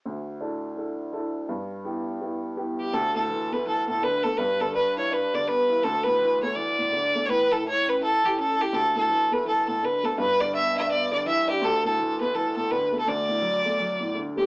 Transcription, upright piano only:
X:1
M:4/4
L:1/8
Q:"Swing" 1/4=166
K:Glyd
V:1 name="Upright piano" clef=bass
D,,2 [DEA]2 [DEA]2 [DEA]2 | G,,2 [B,EG]2 [B,EG]2 [B,EG]2 | D,, A,, E, A, E, A,, D, A, | G,, D, D E D D, B, E |
D,, A,, E, A, E, A,, D, A, | A,, E, E C E E, C E | D,, A,, E, A, E, A,, D, A, | G,, D, B, D B, D, E, D |
D,, A,, E, A, E, A,, D, A, | D,, A,, F, A, F, A,, D, A, |]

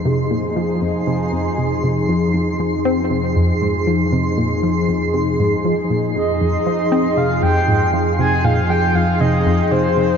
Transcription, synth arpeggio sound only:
X:1
M:4/4
L:1/8
Q:1/4=118
K:Fm
V:1 name="Synth arpeggio sound" clef=bass
C, B,, F, F,, C, F,, C, C, | F,, F,, F, C C, F,, A,, F, | C, B,, F, F,, C, A,, F, B,, | F,, F,, F, C C, F,, A,, F, |
C, B,, F, F,, C, F,, C, C, |]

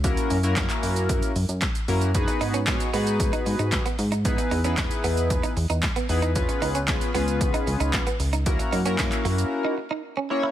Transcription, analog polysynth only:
X:1
M:4/4
L:1/16
Q:1/4=114
K:F#mix
V:1 name="Analog polysynth"
[A,CEFA]3 [A,CEFA]6- [A,CEFA] z4 [A,CEFA]2 | [B,DFGB]3 z [B,DFGc]2 [B,DFGB]6- [B,DFGB] z3 | [B,DEGB]3 [B,DEGB]6- [B,DEGB] z4 [B,DEGB]2 | [B,C^EGB]3 z [B,CEGB]2 [B,CEGB]6- [B,CEGB] z3 |
[A,CEFA]3 [A,CEFA]6- [A,CEFA] z4 [A,CEFc]2 |]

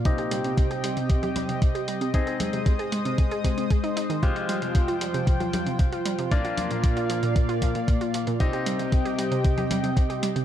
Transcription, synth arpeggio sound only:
X:1
M:4/4
L:1/16
Q:1/4=115
K:Cm
V:1 name="Synth arpeggio sound" clef=bass
C, G G, C, C, G G, C, C, G G, C, C, G G, C, | C, A A, C, C, A A, C, C, A C, C A E E E, | C, F G, C, C, F G, C, C, F G, C, C, F G, C, | B,, F F, B,, B,, F F, B,, B,, F F, B,, B,, F F, B,, |
C, G G, C, C, G G, C, C, G G, C, C, G G, C, |]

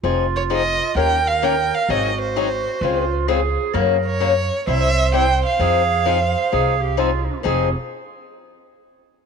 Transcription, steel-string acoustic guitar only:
X:1
M:4/4
L:1/8
Q:"Swing" 1/4=130
K:Fm
V:1 name="Steel-string acoustic guitar"
[F,CEA] z [F,CEA] z [E,B,DGB] z [E,B,DGB] z | [E,_G,CEA] z [E,G,CEA] z [D,A,CFA] z [D,A,CFA] z | [D,_G,B,D_G] z [D,G,B,DG] z [C,=G,C=E=G] z [C,G,CEG] z | [F,CEA] z [F,CEA] z [F,CEA] z [F,CEA] z |
[F,CEA] z6 z |]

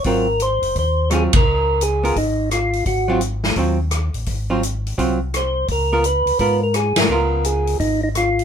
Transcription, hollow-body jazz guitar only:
X:1
M:4/4
L:1/8
Q:"Swing" 1/4=170
K:Abmix
V:1 name="Hollow-body jazz guitar"
[G,CF] z4 z [G,CF] z | z3 [_CFB] z4 | z [G,CF] z2 [G,CF] z3 | z [G,CF] z2 [G,CF] z3 |
z [_CFB] z2 [CFB] z3 | [_CFB]4- [CFB] z3 |]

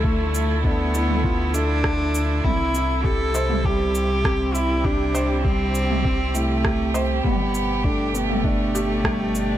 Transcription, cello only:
X:1
M:4/4
L:1/8
Q:1/4=100
K:C
V:1 name="Cello"
A,2 B,3 D3 | E2 A2 G3 E | D2 C3 A,3 | B,2 D A,4- A, |]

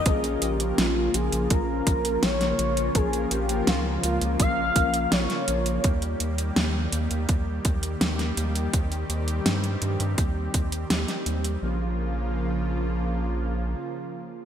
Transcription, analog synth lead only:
X:1
M:4/4
L:1/8
Q:1/4=83
K:Bbdor
V:1 name="Analog synth lead"
A G F A B2 d2 | A G F F f2 d2 | z8 | z8 |
z8 |]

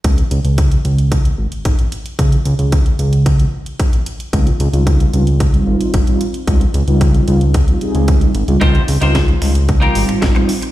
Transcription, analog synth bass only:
X:1
M:4/4
L:1/16
Q:1/4=112
K:Dblyd
V:1 name="Analog synth bass" clef=bass
D,, z D,, D,,2 z D,,3 z A,,, A,,, A,,, z3 | D,, z D,, D,,2 z D,,3 z6 z | D,, z D,, D,,2 z D,,3 z A,,, A,,, A,,, z3 | D,, z D,, D,,2 z D,,3 z2 D,,2 z A,,, D,, |
D,, z D,, D,,2 z D,,3 z A,,, A,,, A,,, z3 |]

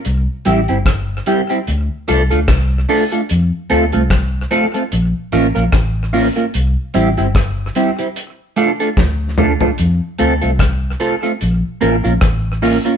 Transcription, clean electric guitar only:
X:1
M:4/4
L:1/16
Q:"Swing 16ths" 1/4=74
K:Dm
V:1 name="Clean electric guitar"
z2 [G,CEG] [G,CEG] z2 [G,CEG] [G,CEG] z2 [A,DFA] [A,DFA] z2 [A,DFA] [A,DFA] | z2 [A,CFA] [A,CFA] z2 [A,CFA] [A,CFA] z2 [B,_DFB] [B,DFB] z2 [B,DFB] [B,DFB] | z2 [G,CEG] [G,CEG] z2 [G,CEG] [G,CEG] z2 [A,DFA] [A,DFA] z2 [A,DFA] [A,DFA] | z2 [A,CFA] [A,CFA] z2 [A,CFA] [A,CFA] z2 [B,_DFB] [B,DFB] z2 [B,DFB] [B,DFB] |]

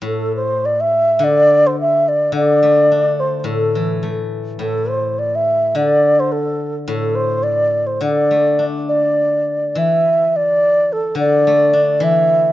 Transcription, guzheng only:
X:1
M:2/4
L:1/8
Q:1/4=105
K:none
V:1 name="Guzheng" clef=bass
A,,4 | D,4 | D, A, D2 | A,, E, A,2 |
A,,4 | D,4 | A,,4 | D, A, D2- |
D2 E,2- | E,3 D, | A, D E,2 |]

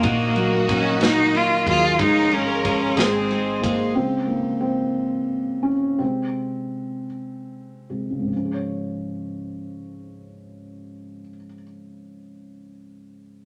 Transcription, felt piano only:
X:1
M:6/8
L:1/8
Q:3/8=57
K:Db
V:1 name="Felt piano"
z6 | z4 z B, | C B, C3 D | C4 z2 |
z6 | z6 |]
V:2 name="Felt piano" clef=bass
B, G, B, E B, G, | A, A, A, A, A, A, | [D,A,F]6 | [C,A,]3 z2 [C,A,C] |
[D,,A,,F,DAd]6- | [D,,A,,F,DAd]6 |]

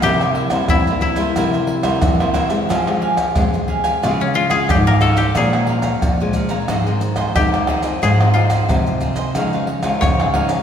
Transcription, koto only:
X:1
M:4/4
L:1/16
Q:1/4=90
K:Fm
V:1 name="Koto"
G4 =E2 E8 z2 | z8 z D F A G B =A G | A6 z6 G4 | A2 F2 z8 d4 |]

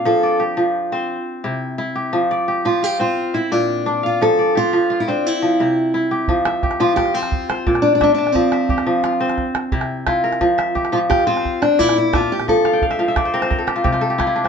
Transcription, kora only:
X:1
M:12/8
L:1/16
Q:3/8=116
K:F
V:1 name="Kora"
f2 d2 G6 c4 z2 E6 G2- | G2 d2 G4 F2 c4 e2 d6 f2- | f2 d2 G4 F2 c4 F,2 E6 G2- | G2 e2 G4 F2 c4 c2 d4 e2 a2- |
a2 e2 G4 F2 c4 z2 E4 F2 B2- | B2 e2 G4 F2 c4 c2 d4 e4- | e2 f g f e f e d c B c B A G F G F A G F E D C |]
V:2 name="Kora" clef=bass
F,4 z2 F,4 C2 z4 C,4 E4 | F,4 z2 F,4 C2 z4 B,,4 D4 | F,4 z2 F,4 C2 z4 C,4 E4 | F,4 z2 F,4 C2 z4 B,,4 D4 |
F,4 z2 F,4 C2 z4 C,4 E4 | F,4 z2 F,4 C2 z4 B,,4 D4 | F,4 z2 F,4 C2 z4 C,4 E4 |]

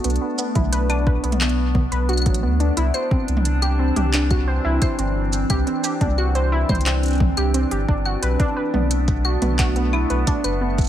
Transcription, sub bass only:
X:1
M:4/4
L:1/16
Q:1/4=88
K:Bphr
V:1 name="Sub bass" clef=bass
B,,, z2 B,,,4 B,,,4 B,,,2 A,,, D,,2 | C,, z2 C,,4 C,,4 C,, z G,,,3 | C,, z2 C,,4 C,,4 C,,2 G,,, G,,,2 | B,,, z2 B,,,4 B,,,4 B,,, z F,,,3 |]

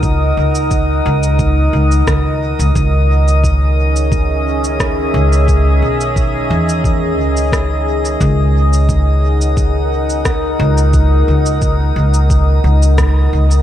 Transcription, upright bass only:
X:1
M:4/4
L:1/16
Q:"Swing 16ths" 1/4=88
K:D#phr
V:1 name="Upright bass" clef=bass
C,,2 C,,4 C,,4 C,,2 C,,3 C,, | C,,12- C,,2 C,,2- | C,,2 B,,,4 E,,4 C,,6 | C,,12- C,,2 C,,2- |
C,,2 C,,4 C,,4 C,,4 C,,2 |]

